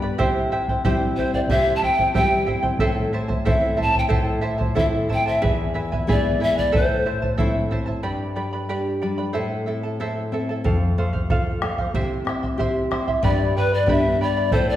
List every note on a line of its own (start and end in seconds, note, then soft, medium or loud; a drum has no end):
0.00 0.14 G2 medium
0.00 0.16 G3 medium
0.00 0.16 B3 soft
0.00 0.16 D4 medium
0.00 0.18 B4 medium
0.00 0.19 D5 medium
0.00 0.18 B5 medium
0.18 1.46 C3 medium
0.18 0.51 E4 medium
0.18 0.51 G4 medium
0.18 0.51 C5 loud
0.18 0.51 E5 medium
0.18 0.52 G5 medium
0.18 bombo low medium
0.52 0.68 E4 medium
0.52 0.69 C5 medium
0.52 0.68 E5 medium
0.52 0.68 G5 medium
0.68 0.84 E4 soft
0.68 0.84 C5 soft
0.68 0.84 G5 medium
0.68 bombo low medium
0.84 1.49 G3 medium
0.84 1.48 C4 soft
0.84 1.17 E4 medium
0.84 1.48 E4 medium
0.84 1.17 G4 medium
0.84 0.92 C5 medium
0.84 1.18 C5 medium
0.84 1.17 E5 medium
0.84 1.17 G5 medium
0.84 bombo low medium
1.16 1.34 E4 medium
1.16 1.32 C5 medium
1.16 1.34 C5 medium
1.16 1.34 E5 medium
1.16 1.34 G5 medium
1.16 bombo low soft
1.33 1.50 E4 soft
1.33 1.50 C5 medium
1.33 1.39 D5 medium
1.33 1.50 G5 medium
1.33 bombo low soft
1.49 2.77 C3 medium
1.49 1.82 E4 medium
1.49 1.83 G4 medium
1.49 1.82 C5 medium
1.49 1.74 E5 loud
1.49 1.81 E5 medium
1.49 1.83 G5 medium
1.49 bombo low medium
1.75 1.85 A5 medium
1.82 1.98 E4 medium
1.82 1.98 C5 medium
1.82 1.99 E5 medium
1.82 2.14 G5 loud
1.82 1.96 G5 medium
1.82 bombo low soft
1.98 2.14 E4 soft
1.98 2.14 C5 medium
1.98 2.14 G5 medium
1.98 bombo low medium
2.14 2.79 G3 soft
2.14 2.79 C4 soft
2.14 2.46 E4 medium
2.14 2.80 E4 medium
2.14 2.48 G4 medium
2.14 2.46 C5 medium
2.14 2.45 E5 medium
2.14 2.61 G5 loud
2.14 2.47 G5 medium
2.14 bombo low medium
2.46 2.63 E4 medium
2.46 2.62 C5 medium
2.46 2.64 E5 medium
2.46 2.61 G5 medium
2.46 bombo low soft
2.63 2.79 E4 soft
2.63 2.80 C5 soft
2.63 2.80 G5 medium
2.63 bombo low medium
2.79 4.08 A2 medium
2.79 3.12 E4 medium
2.79 3.12 A4 medium
2.79 3.13 C5 medium
2.79 3.12 E5 medium
2.79 3.13 A5 medium
2.79 bombo low medium
3.13 3.28 E4 medium
3.13 3.28 C5 medium
3.13 3.30 E5 medium
3.13 3.27 A5 medium
3.28 3.44 E4 soft
3.28 3.45 C5 medium
3.28 3.45 A5 medium
3.28 bombo low medium
3.45 4.10 A3 soft
3.45 4.10 C4 soft
3.45 3.76 E4 medium
3.45 4.10 E4 medium
3.45 3.77 A4 medium
3.45 3.76 C5 medium
3.45 3.76 E5 medium
3.45 3.83 E5 medium
3.45 3.77 A5 medium
3.45 bombo low medium
3.77 3.93 E4 medium
3.77 3.92 C5 medium
3.77 3.95 E5 medium
3.77 3.91 A5 medium
3.77 bombo low medium
3.81 3.97 A5 loud
3.93 4.08 E4 soft
3.93 4.08 C5 soft
3.93 4.09 A5 soft
3.93 bombo low medium
3.98 4.05 G5 medium
4.08 5.38 A2 medium
4.08 4.41 E4 medium
4.08 4.41 A4 medium
4.08 4.41 C5 medium
4.08 4.40 E5 medium
4.08 4.41 A5 medium
4.08 bombo low medium
4.41 4.58 E4 medium
4.41 4.58 C5 medium
4.41 4.59 E5 medium
4.41 4.57 A5 medium
4.58 4.75 E4 soft
4.58 4.74 C5 medium
4.58 4.75 A5 medium
4.58 bombo low medium
4.75 5.40 A3 soft
4.75 5.40 C4 soft
4.75 5.40 E4 medium
4.75 5.08 E4 medium
4.75 5.08 A4 medium
4.75 5.08 C5 medium
4.75 5.08 E5 medium
4.75 4.86 E5 medium
4.75 5.09 A5 medium
4.75 bombo low medium
5.09 5.26 E4 medium
5.09 5.26 C5 medium
5.09 5.26 E5 medium
5.09 5.27 G5 loud
5.09 5.25 A5 medium
5.09 bombo low soft
5.26 5.40 E4 soft
5.26 5.41 C5 medium
5.26 5.57 E5 medium
5.26 5.42 A5 medium
5.42 6.69 E2 medium
5.42 5.74 E4 medium
5.42 5.75 G#4 medium
5.42 5.74 B4 medium
5.42 5.73 E5 medium
5.42 5.74 G#5 medium
5.42 bombo low medium
5.74 5.92 E4 medium
5.74 5.92 B4 medium
5.74 5.91 E5 medium
5.74 5.91 G#5 medium
5.92 6.08 E4 medium
5.92 6.08 B4 medium
5.92 6.08 G#5 medium
5.92 bombo low medium
6.07 6.71 G#3 soft
6.07 6.71 B3 soft
6.07 6.72 E4 soft
6.07 6.39 E4 medium
6.07 6.41 G#4 medium
6.07 6.40 B4 medium
6.07 6.40 D5 loud
6.07 6.39 E5 medium
6.07 6.40 G#5 medium
6.07 bombo low medium
6.40 6.56 E4 medium
6.40 6.55 B4 medium
6.40 6.57 E5 medium
6.40 6.59 E5 loud
6.40 6.54 G#5 medium
6.56 6.72 E4 soft
6.56 6.72 B4 medium
6.56 6.74 D5 medium
6.56 6.73 G#5 medium
6.56 bombo low medium
6.72 8.00 A2 medium
6.72 7.05 E4 medium
6.72 7.06 A4 medium
6.72 7.05 C5 medium
6.72 7.36 C5 medium
6.72 7.04 E5 medium
6.72 7.06 A5 medium
6.72 bombo low medium
7.06 7.22 E4 medium
7.06 7.22 C5 medium
7.06 7.22 E5 medium
7.06 7.21 A5 medium
7.22 7.37 E4 soft
7.22 7.37 C5 soft
7.22 7.37 A5 soft
7.22 bombo low medium
7.38 8.02 A3 soft
7.38 8.03 C4 soft
7.38 7.70 E4 medium
7.38 8.03 E4 medium
7.38 7.71 A4 medium
7.38 7.71 C5 medium
7.38 7.69 E5 medium
7.38 7.71 A5 medium
7.38 bombo low medium
7.71 7.86 E4 medium
7.71 7.86 C5 medium
7.71 7.86 E5 medium
7.71 7.85 A5 medium
7.71 bombo low soft
7.86 8.03 E4 soft
7.86 8.03 C5 soft
7.86 8.03 A5 medium
7.86 bombo low soft
8.03 9.30 G2 soft
8.03 8.36 G4 medium
8.03 8.35 B4 medium
8.03 8.35 D5 medium
8.03 8.34 G5 medium
8.03 8.36 B5 medium
8.36 8.68 G3 soft
8.36 8.53 B4 medium
8.36 8.52 D5 medium
8.36 8.53 G5 medium
8.36 8.52 B5 medium
8.53 8.68 B4 soft
8.53 8.69 D5 soft
8.53 8.69 B5 medium
8.69 9.01 D4 soft
8.69 9.02 G4 medium
8.69 9.01 B4 medium
8.69 9.01 D5 medium
8.69 9.00 G5 medium
8.69 9.01 B5 medium
9.02 9.34 G3 soft
9.02 9.18 B4 medium
9.02 9.18 D5 medium
9.02 9.18 G5 medium
9.02 9.17 B5 medium
9.18 9.33 B4 soft
9.18 9.34 D5 soft
9.18 9.34 B5 medium
9.33 10.61 A2 medium
9.33 9.66 E4 medium
9.33 9.66 A4 medium
9.33 9.66 C5 medium
9.33 9.65 E5 medium
9.33 9.67 A5 medium
9.66 9.99 C4 soft
9.66 9.83 E4 medium
9.66 9.82 A4 soft
9.66 9.83 E5 soft
9.66 9.82 A5 medium
9.83 9.99 E4 soft
9.83 10.00 A4 soft
9.83 10.00 A5 soft
10.00 10.32 E4 medium
10.00 10.31 A4 soft
10.00 10.32 A4 medium
10.00 10.33 C5 medium
10.00 10.31 E5 medium
10.00 10.33 A5 medium
10.32 10.64 C4 soft
10.32 10.49 E4 medium
10.32 10.49 A4 medium
10.32 10.49 E5 soft
10.32 10.48 A5 medium
10.49 10.64 E4 soft
10.49 10.63 A4 soft
10.49 10.65 A5 soft
10.64 11.90 F2 medium
10.64 10.97 A4 medium
10.64 10.97 C5 medium
10.64 10.98 F5 medium
10.64 bombo low medium
10.98 11.29 A3 soft
10.98 11.14 A4 medium
10.98 11.13 C5 medium
10.98 11.12 F5 medium
11.13 11.29 C5 soft
11.13 11.30 F5 medium
11.13 bombo low medium
11.30 11.61 F4 soft
11.30 11.60 A4 medium
11.30 11.61 C5 medium
11.30 11.62 F5 medium
11.30 bombo low medium
11.62 11.94 A3 soft
11.62 11.78 A4 medium
11.62 11.78 C5 medium
11.62 11.77 F5 medium
11.62 bombo rim medium
11.78 11.94 C5 soft
11.78 11.94 F5 medium
11.78 bombo low soft
11.94 13.20 C3 medium
11.94 12.27 E4 medium
11.94 12.27 G4 medium
11.94 12.26 C5 medium
11.94 12.27 E5 medium
11.94 12.28 C6 medium
11.94 bombo low medium
12.25 12.57 C4 soft
12.25 12.43 E4 medium
12.25 12.44 C5 soft
12.25 12.42 C6 medium
12.25 bombo rim soft
12.29 12.42 E5 medium
12.43 12.58 E4 soft
12.43 12.58 E5 soft
12.43 12.59 C6 soft
12.43 bombo low medium
12.58 12.90 E4 medium
12.58 12.90 G4 soft
12.58 12.92 G4 medium
12.58 12.90 C5 medium
12.58 12.91 E5 medium
12.58 12.92 C6 medium
12.58 bombo low medium
12.91 13.23 C4 soft
12.91 13.08 E4 medium
12.91 13.08 C5 medium
12.91 13.07 E5 medium
12.91 13.07 C6 medium
12.91 bombo rim soft
12.91 bombo low soft
13.08 13.24 E4 soft
13.08 13.24 E5 soft
13.08 13.24 C6 medium
13.08 bombo low soft
13.23 14.48 G2 medium
13.23 13.56 G4 medium
13.23 13.56 B4 medium
13.23 13.54 D5 medium
13.23 13.56 D5 medium
13.23 13.55 G5 medium
13.23 13.57 B5 medium
13.23 bombo low medium
13.56 13.75 B4 medium
13.56 13.73 B4 soft
13.56 13.72 D5 medium
13.56 13.72 G5 medium
13.56 13.71 B5 medium
13.72 13.88 B4 soft
13.72 13.89 D5 soft
13.72 13.89 D5 medium
13.72 13.88 B5 soft
13.86 14.50 G3 soft
13.86 14.50 B3 soft
13.86 14.50 D4 soft
13.86 14.21 G4 medium
13.86 14.20 B4 medium
13.86 14.20 D5 medium
13.86 14.23 E5 medium
13.86 14.20 G5 medium
13.86 14.21 B5 medium
13.86 bombo low medium
14.21 14.37 B4 medium
14.21 14.36 D5 medium
14.21 14.54 D5 medium
14.21 14.37 G5 medium
14.21 14.36 B5 medium
14.37 14.53 B4 soft
14.37 14.52 D5 medium
14.37 14.53 B5 medium
14.52 14.76 A2 medium
14.52 14.76 E4 medium
14.52 14.76 A4 medium
14.52 14.76 C5 medium
14.52 14.70 C5 medium
14.52 14.76 E5 medium
14.52 14.76 A5 medium
14.52 bombo low medium
14.69 14.76 D5 medium